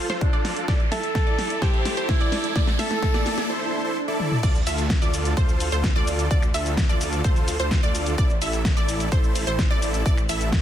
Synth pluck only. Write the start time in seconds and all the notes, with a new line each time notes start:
0.10 C5
0.33 D5
0.68 D5
0.92 E5
1.27 D5
1.62 C5
1.97 C5
2.21 D5
2.56 D5
2.79 E5
3.14 D5
4.43 D5
4.67 E5
5.02 D5
5.37 C5
5.72 C5
5.96 D5
6.31 D5
6.54 E5
6.89 D5
7.24 C5
7.60 C5
7.83 D5
8.18 D5
8.42 E5
8.77 D5
9.12 C5
9.47 C5
9.71 D5
10.06 D5
10.29 E5